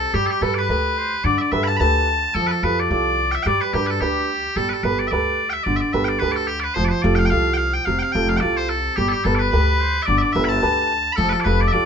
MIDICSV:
0, 0, Header, 1, 5, 480
1, 0, Start_track
1, 0, Tempo, 275989
1, 249, Time_signature, 4, 2, 24, 8
1, 20616, End_track
2, 0, Start_track
2, 0, Title_t, "Bagpipes"
2, 0, Program_c, 0, 109
2, 0, Note_on_c, 0, 69, 96
2, 242, Note_off_c, 0, 69, 0
2, 242, Note_on_c, 0, 67, 102
2, 454, Note_off_c, 0, 67, 0
2, 454, Note_on_c, 0, 69, 76
2, 525, Note_off_c, 0, 69, 0
2, 525, Note_on_c, 0, 67, 76
2, 730, Note_off_c, 0, 67, 0
2, 730, Note_on_c, 0, 69, 89
2, 947, Note_off_c, 0, 69, 0
2, 947, Note_on_c, 0, 74, 97
2, 1015, Note_on_c, 0, 71, 97
2, 1016, Note_off_c, 0, 74, 0
2, 1200, Note_off_c, 0, 71, 0
2, 1200, Note_on_c, 0, 71, 106
2, 2164, Note_off_c, 0, 71, 0
2, 2164, Note_on_c, 0, 74, 113
2, 2398, Note_off_c, 0, 74, 0
2, 2398, Note_on_c, 0, 76, 85
2, 2454, Note_off_c, 0, 76, 0
2, 2454, Note_on_c, 0, 74, 85
2, 2633, Note_off_c, 0, 74, 0
2, 2633, Note_on_c, 0, 76, 100
2, 2849, Note_off_c, 0, 76, 0
2, 2850, Note_on_c, 0, 83, 101
2, 2912, Note_off_c, 0, 83, 0
2, 2912, Note_on_c, 0, 81, 101
2, 3072, Note_off_c, 0, 81, 0
2, 3072, Note_on_c, 0, 83, 118
2, 3131, Note_off_c, 0, 83, 0
2, 3131, Note_on_c, 0, 81, 118
2, 4077, Note_off_c, 0, 81, 0
2, 4077, Note_on_c, 0, 69, 112
2, 4293, Note_off_c, 0, 69, 0
2, 4293, Note_on_c, 0, 71, 91
2, 4369, Note_off_c, 0, 71, 0
2, 4369, Note_on_c, 0, 69, 91
2, 4585, Note_off_c, 0, 69, 0
2, 4585, Note_on_c, 0, 71, 87
2, 4863, Note_off_c, 0, 71, 0
2, 4863, Note_on_c, 0, 74, 84
2, 5044, Note_off_c, 0, 74, 0
2, 5044, Note_on_c, 0, 74, 116
2, 5764, Note_off_c, 0, 74, 0
2, 5764, Note_on_c, 0, 79, 92
2, 5820, Note_off_c, 0, 79, 0
2, 5820, Note_on_c, 0, 76, 92
2, 5960, Note_off_c, 0, 76, 0
2, 5960, Note_on_c, 0, 79, 120
2, 6028, Note_off_c, 0, 79, 0
2, 6028, Note_on_c, 0, 74, 120
2, 6279, Note_off_c, 0, 74, 0
2, 6279, Note_on_c, 0, 71, 80
2, 6495, Note_off_c, 0, 71, 0
2, 6495, Note_on_c, 0, 67, 83
2, 6724, Note_off_c, 0, 67, 0
2, 6724, Note_on_c, 0, 71, 92
2, 6790, Note_off_c, 0, 71, 0
2, 6790, Note_on_c, 0, 69, 92
2, 6965, Note_off_c, 0, 69, 0
2, 6965, Note_on_c, 0, 67, 88
2, 7939, Note_off_c, 0, 67, 0
2, 7939, Note_on_c, 0, 69, 108
2, 8158, Note_off_c, 0, 69, 0
2, 8158, Note_on_c, 0, 71, 64
2, 8229, Note_off_c, 0, 71, 0
2, 8229, Note_on_c, 0, 69, 64
2, 8407, Note_off_c, 0, 69, 0
2, 8407, Note_on_c, 0, 71, 85
2, 8679, Note_off_c, 0, 71, 0
2, 8679, Note_on_c, 0, 74, 89
2, 8823, Note_off_c, 0, 74, 0
2, 8823, Note_on_c, 0, 76, 102
2, 8882, Note_off_c, 0, 76, 0
2, 8882, Note_on_c, 0, 74, 102
2, 9558, Note_off_c, 0, 74, 0
2, 9558, Note_on_c, 0, 79, 90
2, 9616, Note_off_c, 0, 79, 0
2, 9616, Note_on_c, 0, 76, 90
2, 9799, Note_off_c, 0, 76, 0
2, 9799, Note_on_c, 0, 74, 111
2, 10018, Note_off_c, 0, 74, 0
2, 10018, Note_on_c, 0, 76, 81
2, 10094, Note_off_c, 0, 76, 0
2, 10094, Note_on_c, 0, 74, 81
2, 10310, Note_off_c, 0, 74, 0
2, 10310, Note_on_c, 0, 76, 82
2, 10513, Note_off_c, 0, 76, 0
2, 10513, Note_on_c, 0, 79, 94
2, 10582, Note_off_c, 0, 79, 0
2, 10582, Note_on_c, 0, 74, 94
2, 10768, Note_off_c, 0, 74, 0
2, 10768, Note_on_c, 0, 71, 107
2, 10986, Note_off_c, 0, 71, 0
2, 10986, Note_on_c, 0, 74, 97
2, 11060, Note_off_c, 0, 74, 0
2, 11060, Note_on_c, 0, 69, 97
2, 11253, Note_off_c, 0, 69, 0
2, 11253, Note_on_c, 0, 67, 97
2, 11478, Note_off_c, 0, 67, 0
2, 11478, Note_on_c, 0, 74, 93
2, 11542, Note_off_c, 0, 74, 0
2, 11542, Note_on_c, 0, 71, 93
2, 11729, Note_off_c, 0, 71, 0
2, 11729, Note_on_c, 0, 72, 123
2, 11907, Note_off_c, 0, 72, 0
2, 11907, Note_on_c, 0, 74, 63
2, 11965, Note_off_c, 0, 74, 0
2, 11965, Note_on_c, 0, 71, 63
2, 12026, Note_off_c, 0, 71, 0
2, 12026, Note_on_c, 0, 72, 95
2, 12207, Note_off_c, 0, 72, 0
2, 12207, Note_on_c, 0, 74, 88
2, 12438, Note_off_c, 0, 74, 0
2, 12438, Note_on_c, 0, 79, 99
2, 12495, Note_off_c, 0, 79, 0
2, 12495, Note_on_c, 0, 77, 99
2, 12615, Note_off_c, 0, 77, 0
2, 12615, Note_on_c, 0, 79, 117
2, 12690, Note_off_c, 0, 79, 0
2, 12690, Note_on_c, 0, 77, 117
2, 13103, Note_off_c, 0, 77, 0
2, 13103, Note_on_c, 0, 79, 103
2, 13162, Note_off_c, 0, 79, 0
2, 13162, Note_on_c, 0, 77, 103
2, 13450, Note_off_c, 0, 77, 0
2, 13450, Note_on_c, 0, 79, 94
2, 13653, Note_off_c, 0, 79, 0
2, 13653, Note_on_c, 0, 77, 105
2, 13891, Note_off_c, 0, 77, 0
2, 13891, Note_on_c, 0, 79, 92
2, 13950, Note_off_c, 0, 79, 0
2, 13950, Note_on_c, 0, 77, 92
2, 14121, Note_off_c, 0, 77, 0
2, 14121, Note_on_c, 0, 79, 102
2, 14413, Note_off_c, 0, 79, 0
2, 14413, Note_on_c, 0, 77, 101
2, 14552, Note_off_c, 0, 77, 0
2, 14552, Note_on_c, 0, 79, 106
2, 14612, Note_off_c, 0, 79, 0
2, 14612, Note_on_c, 0, 74, 106
2, 14901, Note_off_c, 0, 74, 0
2, 14901, Note_on_c, 0, 72, 93
2, 15117, Note_off_c, 0, 72, 0
2, 15117, Note_on_c, 0, 69, 82
2, 15582, Note_off_c, 0, 69, 0
2, 15582, Note_on_c, 0, 67, 92
2, 15800, Note_off_c, 0, 67, 0
2, 15800, Note_on_c, 0, 69, 82
2, 15856, Note_off_c, 0, 69, 0
2, 15856, Note_on_c, 0, 67, 82
2, 16074, Note_off_c, 0, 67, 0
2, 16074, Note_on_c, 0, 69, 92
2, 16265, Note_off_c, 0, 69, 0
2, 16265, Note_on_c, 0, 74, 90
2, 16327, Note_off_c, 0, 74, 0
2, 16327, Note_on_c, 0, 71, 90
2, 16515, Note_off_c, 0, 71, 0
2, 16515, Note_on_c, 0, 71, 111
2, 17432, Note_off_c, 0, 71, 0
2, 17432, Note_on_c, 0, 76, 115
2, 17489, Note_off_c, 0, 76, 0
2, 17489, Note_on_c, 0, 74, 115
2, 17700, Note_off_c, 0, 74, 0
2, 17700, Note_on_c, 0, 76, 92
2, 17763, Note_off_c, 0, 76, 0
2, 17763, Note_on_c, 0, 74, 92
2, 17954, Note_off_c, 0, 74, 0
2, 17954, Note_on_c, 0, 76, 112
2, 18166, Note_off_c, 0, 76, 0
2, 18166, Note_on_c, 0, 83, 108
2, 18237, Note_off_c, 0, 83, 0
2, 18237, Note_on_c, 0, 81, 108
2, 18424, Note_off_c, 0, 81, 0
2, 18424, Note_on_c, 0, 81, 123
2, 19347, Note_off_c, 0, 81, 0
2, 19347, Note_on_c, 0, 83, 113
2, 19409, Note_off_c, 0, 83, 0
2, 19409, Note_on_c, 0, 69, 113
2, 19640, Note_off_c, 0, 69, 0
2, 19640, Note_on_c, 0, 71, 85
2, 19701, Note_off_c, 0, 71, 0
2, 19701, Note_on_c, 0, 69, 85
2, 19834, Note_off_c, 0, 69, 0
2, 19834, Note_on_c, 0, 74, 98
2, 19901, Note_off_c, 0, 74, 0
2, 19901, Note_on_c, 0, 71, 98
2, 20187, Note_off_c, 0, 71, 0
2, 20187, Note_on_c, 0, 74, 93
2, 20306, Note_off_c, 0, 74, 0
2, 20306, Note_on_c, 0, 76, 114
2, 20379, Note_off_c, 0, 76, 0
2, 20379, Note_on_c, 0, 74, 114
2, 20616, Note_off_c, 0, 74, 0
2, 20616, End_track
3, 0, Start_track
3, 0, Title_t, "Oboe"
3, 0, Program_c, 1, 68
3, 0, Note_on_c, 1, 69, 82
3, 226, Note_off_c, 1, 69, 0
3, 237, Note_on_c, 1, 67, 85
3, 500, Note_off_c, 1, 67, 0
3, 534, Note_on_c, 1, 67, 73
3, 730, Note_on_c, 1, 69, 80
3, 756, Note_off_c, 1, 67, 0
3, 990, Note_off_c, 1, 69, 0
3, 1000, Note_on_c, 1, 71, 72
3, 1192, Note_off_c, 1, 71, 0
3, 1207, Note_on_c, 1, 71, 74
3, 1697, Note_on_c, 1, 72, 88
3, 1723, Note_off_c, 1, 71, 0
3, 1970, Note_off_c, 1, 72, 0
3, 2164, Note_on_c, 1, 74, 90
3, 2424, Note_off_c, 1, 74, 0
3, 2443, Note_on_c, 1, 74, 69
3, 2633, Note_off_c, 1, 74, 0
3, 2651, Note_on_c, 1, 76, 93
3, 2931, Note_on_c, 1, 81, 85
3, 2957, Note_off_c, 1, 76, 0
3, 3131, Note_off_c, 1, 81, 0
3, 3139, Note_on_c, 1, 81, 96
3, 3838, Note_off_c, 1, 81, 0
3, 4102, Note_on_c, 1, 69, 80
3, 4354, Note_off_c, 1, 69, 0
3, 4584, Note_on_c, 1, 71, 91
3, 4875, Note_on_c, 1, 74, 69
3, 4901, Note_off_c, 1, 71, 0
3, 5045, Note_off_c, 1, 74, 0
3, 5055, Note_on_c, 1, 74, 78
3, 5824, Note_on_c, 1, 76, 84
3, 5850, Note_off_c, 1, 74, 0
3, 6018, Note_off_c, 1, 76, 0
3, 6038, Note_on_c, 1, 74, 83
3, 6316, Note_on_c, 1, 71, 73
3, 6342, Note_off_c, 1, 74, 0
3, 6513, Note_on_c, 1, 67, 77
3, 6539, Note_off_c, 1, 71, 0
3, 6778, Note_off_c, 1, 67, 0
3, 6790, Note_on_c, 1, 69, 68
3, 6985, Note_on_c, 1, 67, 67
3, 7011, Note_off_c, 1, 69, 0
3, 7734, Note_off_c, 1, 67, 0
3, 15630, Note_on_c, 1, 67, 80
3, 15878, Note_off_c, 1, 67, 0
3, 15897, Note_on_c, 1, 67, 69
3, 16101, Note_on_c, 1, 69, 80
3, 16127, Note_off_c, 1, 67, 0
3, 16386, Note_on_c, 1, 71, 66
3, 16412, Note_off_c, 1, 69, 0
3, 16572, Note_off_c, 1, 71, 0
3, 16583, Note_on_c, 1, 71, 82
3, 17057, Note_on_c, 1, 72, 93
3, 17083, Note_off_c, 1, 71, 0
3, 17331, Note_off_c, 1, 72, 0
3, 17530, Note_on_c, 1, 74, 86
3, 17788, Note_off_c, 1, 74, 0
3, 17813, Note_on_c, 1, 74, 74
3, 18004, Note_on_c, 1, 76, 89
3, 18030, Note_off_c, 1, 74, 0
3, 18464, Note_off_c, 1, 76, 0
3, 18474, Note_on_c, 1, 81, 93
3, 19187, Note_off_c, 1, 81, 0
3, 19445, Note_on_c, 1, 69, 92
3, 19707, Note_off_c, 1, 69, 0
3, 19741, Note_on_c, 1, 69, 81
3, 19956, Note_on_c, 1, 71, 94
3, 19982, Note_off_c, 1, 69, 0
3, 20220, Note_on_c, 1, 74, 68
3, 20247, Note_off_c, 1, 71, 0
3, 20397, Note_off_c, 1, 74, 0
3, 20408, Note_on_c, 1, 74, 97
3, 20616, Note_off_c, 1, 74, 0
3, 20616, End_track
4, 0, Start_track
4, 0, Title_t, "Upright piano"
4, 0, Program_c, 2, 0
4, 0, Note_on_c, 2, 48, 72
4, 186, Note_off_c, 2, 48, 0
4, 243, Note_on_c, 2, 55, 70
4, 728, Note_on_c, 2, 67, 54
4, 729, Note_on_c, 2, 69, 42
4, 742, Note_on_c, 2, 71, 61
4, 1176, Note_off_c, 2, 67, 0
4, 1189, Note_off_c, 2, 69, 0
4, 1193, Note_off_c, 2, 71, 0
4, 1202, Note_on_c, 2, 67, 55
4, 1216, Note_on_c, 2, 69, 45
4, 1219, Note_on_c, 2, 71, 55
4, 1671, Note_off_c, 2, 67, 0
4, 1678, Note_off_c, 2, 69, 0
4, 1680, Note_off_c, 2, 71, 0
4, 2108, Note_off_c, 2, 55, 0
4, 2167, Note_on_c, 2, 50, 72
4, 2643, Note_on_c, 2, 67, 55
4, 2655, Note_on_c, 2, 69, 46
4, 2656, Note_on_c, 2, 71, 66
4, 3111, Note_off_c, 2, 67, 0
4, 3113, Note_off_c, 2, 69, 0
4, 3117, Note_off_c, 2, 71, 0
4, 3137, Note_on_c, 2, 67, 58
4, 3139, Note_on_c, 2, 69, 52
4, 3143, Note_on_c, 2, 71, 61
4, 3599, Note_off_c, 2, 67, 0
4, 3600, Note_off_c, 2, 69, 0
4, 3602, Note_off_c, 2, 71, 0
4, 4030, Note_off_c, 2, 50, 0
4, 4109, Note_on_c, 2, 53, 61
4, 4587, Note_on_c, 2, 65, 51
4, 4593, Note_on_c, 2, 67, 44
4, 4603, Note_on_c, 2, 69, 63
4, 5037, Note_off_c, 2, 65, 0
4, 5039, Note_off_c, 2, 67, 0
4, 5049, Note_off_c, 2, 69, 0
4, 5064, Note_on_c, 2, 65, 53
4, 5065, Note_on_c, 2, 67, 51
4, 5075, Note_on_c, 2, 69, 59
4, 5522, Note_off_c, 2, 65, 0
4, 5523, Note_off_c, 2, 67, 0
4, 5528, Note_off_c, 2, 69, 0
4, 5962, Note_off_c, 2, 53, 0
4, 6029, Note_on_c, 2, 55, 76
4, 6503, Note_on_c, 2, 62, 53
4, 6513, Note_on_c, 2, 67, 44
4, 6523, Note_on_c, 2, 71, 61
4, 6950, Note_off_c, 2, 62, 0
4, 6962, Note_off_c, 2, 71, 0
4, 6963, Note_off_c, 2, 67, 0
4, 6976, Note_on_c, 2, 62, 50
4, 6988, Note_on_c, 2, 71, 53
4, 6989, Note_on_c, 2, 67, 46
4, 7438, Note_off_c, 2, 62, 0
4, 7445, Note_off_c, 2, 67, 0
4, 7445, Note_off_c, 2, 71, 0
4, 7882, Note_off_c, 2, 55, 0
4, 7944, Note_on_c, 2, 55, 68
4, 8422, Note_on_c, 2, 67, 48
4, 8432, Note_on_c, 2, 69, 47
4, 8434, Note_on_c, 2, 71, 60
4, 8876, Note_off_c, 2, 67, 0
4, 8887, Note_off_c, 2, 69, 0
4, 8887, Note_off_c, 2, 71, 0
4, 8902, Note_on_c, 2, 67, 55
4, 8915, Note_on_c, 2, 69, 51
4, 8920, Note_on_c, 2, 71, 59
4, 9361, Note_off_c, 2, 67, 0
4, 9368, Note_off_c, 2, 69, 0
4, 9370, Note_off_c, 2, 71, 0
4, 9799, Note_off_c, 2, 55, 0
4, 9851, Note_on_c, 2, 50, 70
4, 10326, Note_on_c, 2, 67, 58
4, 10328, Note_on_c, 2, 69, 54
4, 10336, Note_on_c, 2, 71, 61
4, 10780, Note_off_c, 2, 67, 0
4, 10787, Note_off_c, 2, 69, 0
4, 10795, Note_off_c, 2, 71, 0
4, 10806, Note_on_c, 2, 67, 52
4, 10813, Note_on_c, 2, 69, 55
4, 10821, Note_on_c, 2, 71, 62
4, 11273, Note_off_c, 2, 67, 0
4, 11276, Note_off_c, 2, 69, 0
4, 11280, Note_off_c, 2, 71, 0
4, 11712, Note_off_c, 2, 50, 0
4, 11755, Note_on_c, 2, 53, 71
4, 12235, Note_on_c, 2, 65, 56
4, 12241, Note_on_c, 2, 67, 52
4, 12249, Note_on_c, 2, 69, 68
4, 12692, Note_off_c, 2, 65, 0
4, 12698, Note_off_c, 2, 67, 0
4, 12710, Note_off_c, 2, 69, 0
4, 12718, Note_on_c, 2, 65, 59
4, 12724, Note_on_c, 2, 67, 50
4, 12736, Note_on_c, 2, 69, 54
4, 13189, Note_off_c, 2, 65, 0
4, 13191, Note_off_c, 2, 67, 0
4, 13197, Note_off_c, 2, 69, 0
4, 13624, Note_off_c, 2, 53, 0
4, 13692, Note_on_c, 2, 48, 66
4, 14170, Note_on_c, 2, 65, 55
4, 14175, Note_on_c, 2, 67, 50
4, 14179, Note_on_c, 2, 69, 66
4, 14623, Note_off_c, 2, 65, 0
4, 14634, Note_off_c, 2, 67, 0
4, 14634, Note_off_c, 2, 69, 0
4, 14649, Note_on_c, 2, 65, 58
4, 14660, Note_on_c, 2, 67, 45
4, 14660, Note_on_c, 2, 69, 57
4, 15115, Note_off_c, 2, 65, 0
4, 15120, Note_off_c, 2, 67, 0
4, 15120, Note_off_c, 2, 69, 0
4, 15553, Note_off_c, 2, 48, 0
4, 15617, Note_on_c, 2, 55, 65
4, 16090, Note_on_c, 2, 67, 56
4, 16099, Note_on_c, 2, 69, 43
4, 16112, Note_on_c, 2, 71, 58
4, 16537, Note_off_c, 2, 67, 0
4, 16550, Note_off_c, 2, 69, 0
4, 16554, Note_off_c, 2, 71, 0
4, 16563, Note_on_c, 2, 67, 58
4, 16576, Note_on_c, 2, 69, 51
4, 16580, Note_on_c, 2, 71, 61
4, 17033, Note_off_c, 2, 67, 0
4, 17039, Note_off_c, 2, 69, 0
4, 17041, Note_off_c, 2, 71, 0
4, 17477, Note_off_c, 2, 55, 0
4, 17531, Note_on_c, 2, 50, 76
4, 18003, Note_on_c, 2, 67, 54
4, 18007, Note_on_c, 2, 69, 51
4, 18020, Note_on_c, 2, 71, 62
4, 18442, Note_off_c, 2, 67, 0
4, 18454, Note_off_c, 2, 69, 0
4, 18461, Note_off_c, 2, 71, 0
4, 18468, Note_on_c, 2, 67, 61
4, 18481, Note_on_c, 2, 69, 51
4, 18487, Note_on_c, 2, 71, 66
4, 18946, Note_off_c, 2, 67, 0
4, 18952, Note_off_c, 2, 69, 0
4, 18956, Note_off_c, 2, 71, 0
4, 19396, Note_off_c, 2, 50, 0
4, 19445, Note_on_c, 2, 53, 69
4, 19927, Note_on_c, 2, 65, 54
4, 19930, Note_on_c, 2, 67, 47
4, 19938, Note_on_c, 2, 69, 58
4, 20371, Note_off_c, 2, 65, 0
4, 20379, Note_off_c, 2, 67, 0
4, 20386, Note_off_c, 2, 69, 0
4, 20397, Note_on_c, 2, 65, 58
4, 20405, Note_on_c, 2, 67, 53
4, 20412, Note_on_c, 2, 69, 60
4, 20616, Note_off_c, 2, 53, 0
4, 20616, Note_off_c, 2, 65, 0
4, 20616, Note_off_c, 2, 67, 0
4, 20616, Note_off_c, 2, 69, 0
4, 20616, End_track
5, 0, Start_track
5, 0, Title_t, "Upright bass"
5, 0, Program_c, 3, 32
5, 236, Note_on_c, 3, 43, 103
5, 467, Note_off_c, 3, 43, 0
5, 719, Note_on_c, 3, 43, 101
5, 1114, Note_off_c, 3, 43, 0
5, 1202, Note_on_c, 3, 38, 89
5, 1987, Note_off_c, 3, 38, 0
5, 2157, Note_on_c, 3, 43, 97
5, 2388, Note_off_c, 3, 43, 0
5, 2646, Note_on_c, 3, 43, 91
5, 3038, Note_off_c, 3, 43, 0
5, 3130, Note_on_c, 3, 38, 99
5, 3912, Note_off_c, 3, 38, 0
5, 4083, Note_on_c, 3, 41, 94
5, 4311, Note_off_c, 3, 41, 0
5, 4572, Note_on_c, 3, 41, 101
5, 4962, Note_off_c, 3, 41, 0
5, 5051, Note_on_c, 3, 36, 96
5, 5833, Note_off_c, 3, 36, 0
5, 6013, Note_on_c, 3, 43, 81
5, 6238, Note_off_c, 3, 43, 0
5, 6496, Note_on_c, 3, 43, 97
5, 6884, Note_off_c, 3, 43, 0
5, 6972, Note_on_c, 3, 38, 87
5, 7753, Note_off_c, 3, 38, 0
5, 7931, Note_on_c, 3, 31, 95
5, 8156, Note_off_c, 3, 31, 0
5, 8404, Note_on_c, 3, 31, 102
5, 8797, Note_off_c, 3, 31, 0
5, 8895, Note_on_c, 3, 38, 84
5, 9674, Note_off_c, 3, 38, 0
5, 9849, Note_on_c, 3, 31, 95
5, 10074, Note_off_c, 3, 31, 0
5, 10327, Note_on_c, 3, 31, 94
5, 10719, Note_off_c, 3, 31, 0
5, 10813, Note_on_c, 3, 38, 91
5, 11593, Note_off_c, 3, 38, 0
5, 11768, Note_on_c, 3, 29, 99
5, 11994, Note_off_c, 3, 29, 0
5, 12243, Note_on_c, 3, 29, 118
5, 12636, Note_off_c, 3, 29, 0
5, 12723, Note_on_c, 3, 36, 99
5, 13507, Note_off_c, 3, 36, 0
5, 13688, Note_on_c, 3, 29, 85
5, 13914, Note_off_c, 3, 29, 0
5, 14172, Note_on_c, 3, 29, 113
5, 14562, Note_off_c, 3, 29, 0
5, 15608, Note_on_c, 3, 31, 99
5, 15835, Note_off_c, 3, 31, 0
5, 16086, Note_on_c, 3, 31, 104
5, 16479, Note_off_c, 3, 31, 0
5, 16576, Note_on_c, 3, 38, 89
5, 17357, Note_off_c, 3, 38, 0
5, 17528, Note_on_c, 3, 31, 105
5, 17755, Note_off_c, 3, 31, 0
5, 18004, Note_on_c, 3, 31, 110
5, 18399, Note_off_c, 3, 31, 0
5, 18485, Note_on_c, 3, 38, 92
5, 19271, Note_off_c, 3, 38, 0
5, 19444, Note_on_c, 3, 29, 104
5, 19674, Note_off_c, 3, 29, 0
5, 19925, Note_on_c, 3, 29, 110
5, 20320, Note_off_c, 3, 29, 0
5, 20412, Note_on_c, 3, 36, 84
5, 20616, Note_off_c, 3, 36, 0
5, 20616, End_track
0, 0, End_of_file